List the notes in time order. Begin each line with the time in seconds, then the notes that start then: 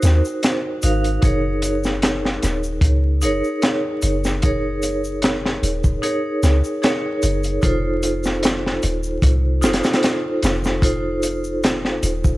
Already playing: D#4 F#4 A#4 C5
0.02 D#2, snare, closed hi-hat, shaker
0.25 shaker
0.43 snare, closed hi-hat, shaker
0.82 G#1 D#4 F#4 A#4 F5, closed hi-hat, shaker
1.04 closed hi-hat, shaker
1.22 F#1 D#4 G#4 A#4 C#5, kick, closed hi-hat, shaker
1.62 closed hi-hat, shaker
1.84 snare, shaker
2.02 snare, closed hi-hat, shaker
2.25 snare
2.43 D#1, snare, closed hi-hat, shaker
2.64 shaker
2.81 C#2, kick, closed hi-hat, shaker
3.22 F#1 D#4 G#4 A#4 C#5, closed hi-hat, shaker
3.44 shaker
3.62 snare, closed hi-hat, shaker
4.02 F#1, closed hi-hat, shaker
4.24 snare, shaker
4.42 D#4 G#4 A#4 C#5, kick, closed hi-hat, shaker
4.82 closed hi-hat, shaker
5.04 shaker
5.22 snare, closed hi-hat, shaker
5.46 snare
5.63 D#1, closed hi-hat, shaker
5.84 kick, shaker
6.02 D#4 G#4 A#4 C#5, closed hi-hat, shaker
6.43 C#2, snare, closed hi-hat, shaker
6.64 shaker
6.82 D#4 G#4 A#4 C#5, snare, closed hi-hat, shaker
7.22 F#1, closed hi-hat, shaker
7.44 closed hi-hat, shaker
7.62 F1 D#4 F4 A4 C5, kick, closed hi-hat, shaker
8.03 closed hi-hat, shaker
8.24 snare, shaker
8.43 snare, closed hi-hat, shaker
8.66 snare
8.83 D#1, closed hi-hat, shaker
9.03 shaker
9.22 C2, kick, closed hi-hat, shaker
9.61 F1 D#4 F4 A4 C5, snare, closed hi-hat, shaker
9.73 snare, closed hi-hat
9.84 snare, closed hi-hat, shaker
9.93 snare, closed hi-hat
10.03 snare, closed hi-hat, shaker
10.42 F1, snare, closed hi-hat, shaker
10.64 snare, shaker
10.81 D#4 F4 A4 C5, kick, closed hi-hat, shaker
11.23 closed hi-hat, shaker
11.44 shaker
11.63 snare, closed hi-hat, shaker
11.85 snare
12.03 D#1, closed hi-hat, shaker
12.24 kick, shaker